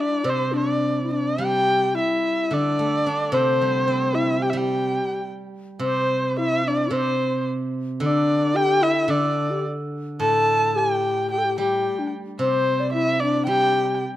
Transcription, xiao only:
0.00 0.26 D4 medium
0.25 0.54 C5 medium
0.52 1.03 D4 medium
1.03 1.13 E4 soft
1.11 1.39 D4 medium
1.39 1.96 G4 medium
1.95 2.53 E4 medium
2.52 3.07 D4 medium
3.33 4.15 C5 medium
4.14 4.40 E4 medium
4.41 4.54 G4 medium
4.55 5.21 G4 medium
5.81 6.39 C5 medium
6.38 6.65 E4 medium
6.66 6.94 D4 medium
6.92 7.47 C5 medium
8.01 8.56 D4 medium
8.55 8.83 G4 medium
8.82 9.11 E4 medium
9.09 9.52 D4 medium
9.51 9.64 G4 medium
10.20 10.77 A4 medium
10.76 11.31 G4 medium
11.32 11.39 G4 medium
11.38 11.46 A4 medium
11.44 11.58 G4 medium
11.59 12.01 G4 medium
11.99 12.13 D4 medium
12.40 12.81 C5 medium
12.80 12.93 D5 medium
12.93 13.19 E4 medium
13.22 13.50 D4 medium
13.49 14.04 G4 medium

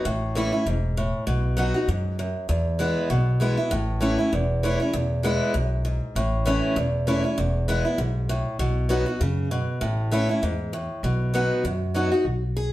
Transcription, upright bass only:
0.05 0.49 A1 medium
0.66 1.10 E1 medium
1.27 1.71 B1 medium
1.88 2.32 F#2 medium
2.49 2.93 E2 medium
3.10 3.54 B1 medium
3.71 4.15 A1 medium
4.33 4.76 E1 medium
4.94 5.38 E1 medium
5.55 5.98 B1 medium
6.15 6.59 A1 medium
6.76 7.20 E1 medium
7.38 7.81 E1 medium
7.98 8.42 B1 medium
8.59 9.03 B1 medium
9.21 9.64 F#2 medium
9.81 10.25 A1 loud
10.42 10.86 E2 medium
11.03 11.47 B1 medium
11.64 12.08 F#2 medium
12.25 12.69 B1 medium

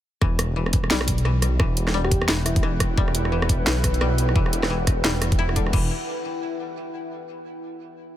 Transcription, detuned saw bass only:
0.22 0.89 E1 medium
0.91 1.58 B1 loud
1.60 2.28 E1 medium
2.28 2.96 E1 loud
2.98 3.65 E1 loud
3.67 4.34 B1 loud
4.36 5.03 E1 loud
5.05 5.72 E1 loud
5.73 5.89 E1 medium

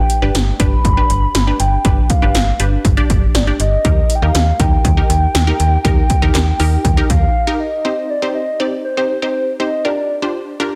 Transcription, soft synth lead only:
0.00 0.35 G5 loud
0.60 1.61 B5 loud
1.60 2.09 G5 loud
2.10 3.06 F5 loud
3.35 3.46 D5 medium
3.60 4.17 D#5 loud
4.15 4.24 G5 medium
4.22 4.61 F5 loud
4.60 7.09 G5 loud
7.10 7.61 F5 loud
7.60 8.11 D#5 loud
8.10 8.34 D5 loud
8.35 8.61 D#5 loud
8.60 8.84 C5 medium
8.85 9.08 C5 medium
9.10 9.56 C5 loud
9.60 9.86 D#5 medium
9.85 10.35 D5 medium

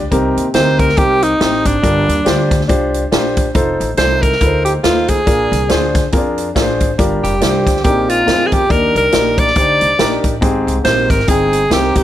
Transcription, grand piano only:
0.11 0.76 C3 medium
0.11 0.45 C4 medium
0.11 0.45 D#4 medium
0.11 0.45 G4 medium
0.11 0.45 A#4 medium
0.54 0.88 C4 medium
0.54 0.88 D#4 medium
0.54 0.88 G4 medium
0.54 0.61 G#4 medium
0.61 0.91 A#4 medium
0.97 1.31 C4 medium
0.97 1.31 D#4 medium
0.97 1.31 G4 medium
0.97 1.31 A#4 medium
1.40 1.73 C4 medium
1.40 1.74 D#4 medium
1.40 1.74 G4 medium
1.40 1.74 C5 medium
1.82 2.47 G2 medium
1.82 2.16 D4 medium
1.82 2.16 F4 medium
1.82 2.17 G4 medium
1.82 2.17 A#4 medium
2.25 2.59 D4 medium
2.25 2.59 F4 medium
2.25 2.59 G4 medium
2.25 2.60 C5 loud
2.68 3.02 D4 medium
2.68 3.02 F4 medium
2.68 3.02 G4 medium
2.68 3.03 C5 medium
3.12 3.45 D4 medium
3.12 3.45 F4 medium
3.12 3.46 G4 medium
3.12 3.18 A#4 medium
3.18 3.48 C5 medium
3.54 3.88 D#4 medium
3.54 3.88 F4 medium
3.54 3.89 A4 medium
3.54 3.89 C5 medium
3.97 4.31 D#4 medium
3.97 4.31 F4 medium
3.97 4.31 A4 medium
3.97 4.04 D5 medium
4.03 4.34 D#5 medium
4.40 4.74 D#4 medium
4.40 4.74 F4 medium
4.40 4.74 A4 medium
4.40 4.47 B4 medium
4.47 4.77 C5 medium
4.84 5.17 D#4 medium
4.84 5.17 F4 medium
4.84 5.18 A4 medium
4.84 4.91 B4 medium
4.90 5.20 C5 medium
5.26 5.91 A#2 medium
5.26 5.60 D4 medium
5.26 5.60 F4 medium
5.26 5.60 G#4 medium
5.26 5.61 A#4 medium
5.69 6.03 D4 medium
5.69 6.03 F4 medium
5.69 6.03 G#4 medium
5.69 6.03 C5 loud
6.12 6.19 C4 medium
6.12 6.46 F4 medium
6.12 6.46 G#4 medium
6.12 6.46 A#4 medium
6.17 6.48 D4 medium
6.55 6.89 D4 medium
6.55 6.89 F4 medium
6.55 6.89 G#4 medium
6.55 6.62 A#4 medium
6.62 6.92 C5 medium
6.98 7.63 G2 medium
6.98 7.32 D4 medium
6.98 7.32 F4 medium
6.98 7.32 G4 medium
6.98 7.32 A#4 medium
7.40 7.74 D4 medium
7.40 7.74 F4 medium
7.40 7.75 G4 medium
7.40 7.48 A#4 medium
7.47 7.78 C5 medium
7.84 8.48 A#2 medium
7.84 8.17 C4 medium
7.84 7.90 D4 soft
7.84 8.18 G#4 medium
7.84 8.18 A#4 medium
7.89 8.20 D#4 medium
8.26 8.60 C4 medium
8.26 8.60 D#4 medium
8.26 8.60 G#4 medium
8.26 8.61 A#4 medium
8.69 9.34 D#3 medium
8.69 9.03 D4 medium
8.69 9.03 D#4 medium
8.69 9.04 G4 medium
8.69 9.04 A#4 medium
9.12 9.46 D4 medium
9.12 9.46 D#4 medium
9.12 9.19 F#4 soft
9.12 9.46 A#4 medium
9.18 9.49 G4 medium
9.55 9.89 D4 medium
9.55 9.89 D#4 medium
9.55 9.89 G4 medium
9.55 9.90 C5 medium
9.98 10.32 D4 medium
9.98 10.32 D#4 medium
9.98 10.32 G4 medium
9.98 10.33 A#4 medium
10.41 11.06 G#2 medium
10.41 10.75 C4 medium
10.41 10.75 D#4 medium
10.41 10.75 G4 medium
10.41 10.76 G#4 medium
10.84 11.18 C4 medium
10.84 11.18 D#4 medium
10.84 11.18 G4 medium
10.84 11.18 A#4 medium
11.27 11.61 C4 medium
11.27 11.61 D#4 medium
11.27 11.62 G#4 medium
11.27 11.61 G5 medium
11.70 12.03 C4 medium
11.70 12.03 D#4 medium
11.70 12.03 G4 medium
11.70 12.03 A#4 medium

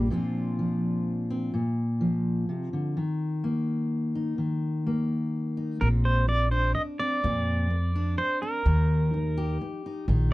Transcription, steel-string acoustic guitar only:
0.10 1.52 A#2 medium
0.10 0.59 F3 soft
0.10 1.29 C4 medium
0.10 1.52 D4 medium
0.10 2.97 F4 medium
0.59 1.51 F3 medium
1.30 1.51 C4 soft
1.54 2.49 A#2 medium
2.01 2.93 F3 medium
2.49 2.73 C3 medium
2.73 2.97 D3 soft
2.97 4.37 D#3 medium
3.44 4.86 A#3 medium
4.15 4.36 D#4 soft
4.38 5.81 D#3 medium
4.87 5.79 A#3 medium
5.57 5.78 D#4 soft
5.81 6.27 A#2 medium
5.81 6.99 C4 medium
6.27 muted steel-string acoustic guitar stroke medium
6.52 7.20 D4 soft
6.75 muted steel-string acoustic guitar stroke medium
7.00 7.21 C4 medium
7.24 7.69 A#2 medium
7.24 8.41 C4 medium
7.70 muted steel-string acoustic guitar stroke medium
7.95 8.63 D4 medium
8.18 muted steel-string acoustic guitar stroke medium
8.42 8.63 C4 medium
8.66 9.14 D#3 medium
8.66 9.85 D#4 medium
9.14 muted steel-string acoustic guitar stroke medium
9.37 10.06 G4 medium
9.61 muted steel-string acoustic guitar stroke medium
9.86 10.06 D#4 medium
10.08 10.33 D#3 medium
10.08 10.33 D#4 medium

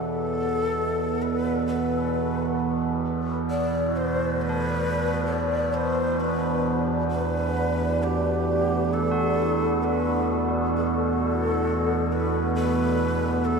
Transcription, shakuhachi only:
0.00 1.23 A4 medium
1.22 1.67 B4 loud
1.67 2.99 B4 medium
3.50 3.98 D5 loud
3.96 4.43 C5 loud
4.42 5.34 B4 loud
5.32 5.76 D5 medium
5.74 6.22 C5 loud
6.20 6.88 B4 loud
7.11 8.04 B4 loud
8.03 8.95 G4 loud
8.93 9.85 A4 loud
9.83 10.52 B4 loud
10.77 12.14 A4 loud
12.12 12.54 B4 medium
12.55 13.46 B4 loud
13.45 13.60 A4 medium

